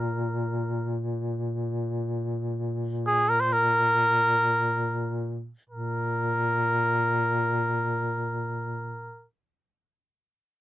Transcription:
0, 0, Header, 1, 3, 480
1, 0, Start_track
1, 0, Tempo, 500000
1, 10180, End_track
2, 0, Start_track
2, 0, Title_t, "Muted trumpet"
2, 0, Program_c, 0, 59
2, 0, Note_on_c, 0, 70, 84
2, 944, Note_off_c, 0, 70, 0
2, 2946, Note_on_c, 0, 68, 100
2, 3161, Note_on_c, 0, 70, 108
2, 3175, Note_off_c, 0, 68, 0
2, 3267, Note_on_c, 0, 72, 92
2, 3281, Note_off_c, 0, 70, 0
2, 3388, Note_on_c, 0, 70, 121
2, 3402, Note_off_c, 0, 72, 0
2, 5170, Note_off_c, 0, 70, 0
2, 5477, Note_on_c, 0, 70, 85
2, 8892, Note_off_c, 0, 70, 0
2, 10180, End_track
3, 0, Start_track
3, 0, Title_t, "Duduk"
3, 0, Program_c, 1, 69
3, 0, Note_on_c, 1, 46, 44
3, 5301, Note_off_c, 1, 46, 0
3, 5465, Note_on_c, 1, 46, 48
3, 8880, Note_off_c, 1, 46, 0
3, 10180, End_track
0, 0, End_of_file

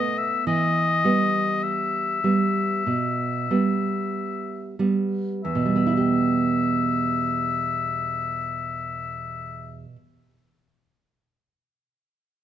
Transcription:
0, 0, Header, 1, 3, 480
1, 0, Start_track
1, 0, Key_signature, 1, "minor"
1, 0, Tempo, 1165049
1, 191, Time_signature, 4, 2, 24, 8
1, 673, Tempo, 1232033
1, 1153, Tempo, 1290323
1, 2113, Tempo, 1271186
1, 4752, End_track
2, 0, Start_track
2, 0, Title_t, "Oboe"
2, 0, Program_c, 0, 68
2, 0, Note_on_c, 0, 75, 84
2, 74, Note_on_c, 0, 76, 69
2, 80, Note_off_c, 0, 75, 0
2, 191, Note_off_c, 0, 76, 0
2, 193, Note_on_c, 0, 75, 89
2, 672, Note_on_c, 0, 76, 61
2, 678, Note_off_c, 0, 75, 0
2, 1869, Note_off_c, 0, 76, 0
2, 2112, Note_on_c, 0, 76, 70
2, 3775, Note_off_c, 0, 76, 0
2, 4752, End_track
3, 0, Start_track
3, 0, Title_t, "Nylon-string guitar"
3, 0, Program_c, 1, 24
3, 0, Note_on_c, 1, 57, 46
3, 0, Note_on_c, 1, 59, 51
3, 175, Note_off_c, 1, 57, 0
3, 175, Note_off_c, 1, 59, 0
3, 192, Note_on_c, 1, 52, 56
3, 424, Note_off_c, 1, 52, 0
3, 431, Note_on_c, 1, 55, 47
3, 433, Note_on_c, 1, 59, 50
3, 894, Note_off_c, 1, 55, 0
3, 894, Note_off_c, 1, 59, 0
3, 909, Note_on_c, 1, 55, 45
3, 911, Note_on_c, 1, 59, 43
3, 1137, Note_off_c, 1, 55, 0
3, 1138, Note_off_c, 1, 59, 0
3, 1153, Note_on_c, 1, 47, 43
3, 1382, Note_off_c, 1, 47, 0
3, 1391, Note_on_c, 1, 55, 47
3, 1392, Note_on_c, 1, 59, 47
3, 1856, Note_off_c, 1, 55, 0
3, 1856, Note_off_c, 1, 59, 0
3, 1869, Note_on_c, 1, 55, 45
3, 1872, Note_on_c, 1, 59, 45
3, 2098, Note_off_c, 1, 55, 0
3, 2100, Note_off_c, 1, 59, 0
3, 2113, Note_on_c, 1, 40, 50
3, 2153, Note_on_c, 1, 47, 47
3, 2192, Note_on_c, 1, 55, 47
3, 2231, Note_on_c, 1, 59, 45
3, 2271, Note_on_c, 1, 64, 45
3, 2309, Note_off_c, 1, 64, 0
3, 2311, Note_on_c, 1, 67, 45
3, 3776, Note_off_c, 1, 40, 0
3, 3816, Note_off_c, 1, 47, 0
3, 3855, Note_off_c, 1, 55, 0
3, 3893, Note_off_c, 1, 59, 0
3, 3974, Note_off_c, 1, 67, 0
3, 4752, End_track
0, 0, End_of_file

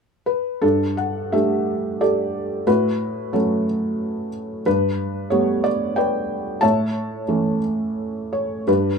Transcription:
0, 0, Header, 1, 2, 480
1, 0, Start_track
1, 0, Tempo, 692841
1, 427, Time_signature, 3, 2, 24, 8
1, 1389, Tempo, 660066
1, 5229, Tempo, 696056
1, 6401, End_track
2, 0, Start_track
2, 0, Title_t, "Felt piano"
2, 0, Program_c, 0, 0
2, 182, Note_on_c, 0, 71, 66
2, 426, Note_on_c, 0, 69, 69
2, 427, Note_on_c, 0, 43, 45
2, 433, Note_off_c, 0, 71, 0
2, 433, Note_on_c, 0, 62, 55
2, 562, Control_c, 0, 64, 127
2, 655, Note_off_c, 0, 69, 0
2, 674, Note_on_c, 0, 78, 58
2, 914, Note_off_c, 0, 62, 0
2, 917, Note_on_c, 0, 76, 61
2, 918, Note_on_c, 0, 55, 33
2, 920, Note_on_c, 0, 57, 33
2, 924, Note_on_c, 0, 62, 38
2, 924, Note_on_c, 0, 69, 48
2, 925, Note_off_c, 0, 78, 0
2, 925, Note_on_c, 0, 67, 47
2, 1383, Note_off_c, 0, 69, 0
2, 1385, Note_off_c, 0, 67, 0
2, 1392, Note_on_c, 0, 74, 61
2, 1394, Note_on_c, 0, 69, 47
2, 1396, Note_on_c, 0, 67, 47
2, 1405, Note_off_c, 0, 76, 0
2, 1845, Note_off_c, 0, 43, 0
2, 1846, Note_off_c, 0, 55, 0
2, 1847, Note_off_c, 0, 57, 0
2, 1847, Note_off_c, 0, 69, 0
2, 1848, Note_off_c, 0, 67, 0
2, 1849, Note_off_c, 0, 62, 0
2, 1873, Note_on_c, 0, 45, 53
2, 1873, Note_on_c, 0, 71, 73
2, 1876, Note_on_c, 0, 66, 53
2, 1879, Note_on_c, 0, 64, 53
2, 1881, Control_c, 0, 64, 0
2, 1890, Note_off_c, 0, 74, 0
2, 2012, Control_c, 0, 64, 127
2, 2345, Note_off_c, 0, 66, 0
2, 2352, Note_on_c, 0, 54, 37
2, 2353, Note_on_c, 0, 69, 52
2, 2356, Note_on_c, 0, 66, 38
2, 2358, Note_on_c, 0, 57, 34
2, 2359, Note_on_c, 0, 61, 42
2, 2373, Note_off_c, 0, 71, 0
2, 2574, Note_off_c, 0, 64, 0
2, 3049, Note_off_c, 0, 69, 0
2, 3050, Note_off_c, 0, 66, 0
2, 3288, Note_off_c, 0, 54, 0
2, 3290, Note_off_c, 0, 45, 0
2, 3290, Note_off_c, 0, 57, 0
2, 3291, Note_off_c, 0, 61, 0
2, 3319, Note_on_c, 0, 62, 54
2, 3321, Note_on_c, 0, 43, 52
2, 3321, Note_on_c, 0, 71, 73
2, 3328, Control_c, 0, 64, 0
2, 3470, Control_c, 0, 64, 127
2, 3769, Note_off_c, 0, 71, 0
2, 3788, Note_on_c, 0, 73, 63
2, 3797, Note_on_c, 0, 55, 41
2, 3798, Note_on_c, 0, 57, 36
2, 3801, Note_on_c, 0, 59, 40
2, 4007, Note_off_c, 0, 62, 0
2, 4031, Note_on_c, 0, 74, 72
2, 4039, Note_off_c, 0, 73, 0
2, 4266, Note_on_c, 0, 79, 66
2, 4269, Note_off_c, 0, 74, 0
2, 4276, Note_on_c, 0, 71, 50
2, 4279, Note_on_c, 0, 74, 48
2, 4722, Note_off_c, 0, 71, 0
2, 4723, Note_off_c, 0, 43, 0
2, 4723, Note_off_c, 0, 55, 0
2, 4724, Note_off_c, 0, 57, 0
2, 4724, Note_off_c, 0, 74, 0
2, 4725, Note_off_c, 0, 59, 0
2, 4737, Note_on_c, 0, 81, 81
2, 4747, Note_on_c, 0, 73, 61
2, 4749, Note_on_c, 0, 76, 58
2, 4751, Note_on_c, 0, 45, 52
2, 4761, Note_off_c, 0, 79, 0
2, 4761, Control_c, 0, 64, 0
2, 4906, Control_c, 0, 64, 127
2, 5192, Note_off_c, 0, 81, 0
2, 5226, Note_on_c, 0, 52, 36
2, 5229, Note_on_c, 0, 57, 36
2, 5229, Note_on_c, 0, 61, 39
2, 5431, Note_off_c, 0, 73, 0
2, 5432, Note_off_c, 0, 76, 0
2, 5947, Note_on_c, 0, 73, 53
2, 6159, Note_off_c, 0, 52, 0
2, 6160, Note_off_c, 0, 45, 0
2, 6161, Note_off_c, 0, 57, 0
2, 6161, Note_off_c, 0, 61, 0
2, 6186, Note_on_c, 0, 43, 51
2, 6189, Note_on_c, 0, 71, 64
2, 6190, Note_on_c, 0, 62, 46
2, 6192, Note_on_c, 0, 67, 46
2, 6195, Note_off_c, 0, 73, 0
2, 6198, Control_c, 0, 64, 0
2, 6326, Control_c, 0, 64, 127
2, 6401, Note_off_c, 0, 43, 0
2, 6401, Note_off_c, 0, 62, 0
2, 6401, Note_off_c, 0, 67, 0
2, 6401, Note_off_c, 0, 71, 0
2, 6401, End_track
0, 0, End_of_file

